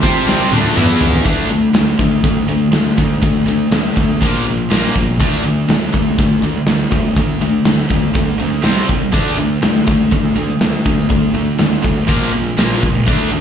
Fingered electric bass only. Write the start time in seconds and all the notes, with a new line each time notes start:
0.03 C3
0.27 C2
0.52 D2
0.76 E2
1.26 D2
1.50 D2
1.74 D2
1.99 D2
2.24 D2
2.47 D2
2.72 D2
2.98 D2
3.23 D2
3.47 D2
3.71 D2
3.97 D2
4.22 A#1
4.45 A#1
4.70 A#1
4.96 A#1
5.21 D2
5.44 D2
5.69 D2
5.94 D2
6.19 D2
6.43 D2
6.67 D2
6.92 D2
7.17 D2
7.41 D2
7.65 D2
7.90 D2
8.15 D2
8.40 D2
8.64 C2
8.90 C2
9.14 D2
9.39 D2
9.63 D2
9.88 D2
10.12 D2
10.37 D2
10.61 D2
10.86 D2
11.10 D2
11.34 D2
11.59 D2
11.84 D2
12.09 A#1
12.34 A#1
12.58 A#1
12.83 C#2
13.08 D2
13.32 D2